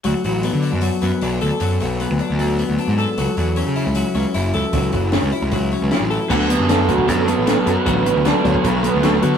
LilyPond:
<<
  \new Staff \with { instrumentName = "Analog synth lead" } { \time 4/4 \key d \lydian \tempo 4 = 153 r1 | r1 | r1 | r1 |
r4. fis'8 a'4. b'8~ | b'8 b'8 d''8 cis''8 b'8 b'8 a'8. r16 | }
  \new Staff \with { instrumentName = "Clean electric guitar" } { \time 4/4 \key d \lydian fis8 fis8 b8 d'8 fis8 b8 d'8 a'8 | fis8 fis8 b8 d'8 fis8 b8 d'8 a'8 | fis8 fis8 cis'8 e'8 fis8 cis'8 e'8 a'8 | fis8 fis8 cis'8 e'8 fis8 cis'8 e'8 a'8 |
<fis b fis'>8 <fis b>8 <fis b>8 <fis b>8 <fis b>8 <fis b>8 <fis b>8 <fis b>8 | <fis b fis'>8 <fis b>8 <fis b>8 <fis b>8 <fis b>8 <fis b>8 <fis b>8 <fis b>8 | }
  \new Staff \with { instrumentName = "Overdriven electric guitar" } { \time 4/4 \key d \lydian r1 | r1 | r1 | r1 |
d8 b8 a'8 fis'8 fis8 b8 fis8 fis'8 | d8 b8 a'8 fis'8 fis8 b8 fis8 fis'8 | }
  \new Staff \with { instrumentName = "Picked electric bass" } { \clef bass \time 4/4 \key d \lydian d,16 r16 a,,8. d8 fis,8 r16 fis,16 r16 b,,8 d,16 r16 | fis,8 b,,8. d,16 r16 d,4 d,16 r16 gis,8 r16 | cis,16 r16 e,8. cis8 cis,8 r16 cis,16 r16 fis,,8 cis,16 r16 | cis,8 fis,,8. cis,16 r16 cis,4 cis,16 r16 a,,8 r16 |
d,8. fis,8. d,8 fis,8. a,,8 r16 fis,16 r16 | a,,8. d,8 r16 d,16 r16 b,,8. d,8. d16 r16 | }
  \new DrumStaff \with { instrumentName = "Drums" } \drummode { \time 4/4 hho8 hho8 hho8 hho8 hho8 hho8 hho8 hho8 | hho8 hho8 hho8 hho8 hho8 hho8 hho8 hho8 | hho8 hho8 hho8 hho8 hho8 hho8 hho8 hho8 | <hho bd>8 <hho bd>8 <hho sn>8 hho8 <hho bd>8 hho8 <hho sn>8 hho8 |
<cymc bd>8 hh8 <hh sn>8 <hh bd>16 bd16 <hh bd>8 hh8 <hh sn>8 hh8 | <hh bd>8 hh8 <hh sn>8 <hh bd>16 bd16 <hh bd>8 hh8 <hh sn>8 hh16 sn16 | }
>>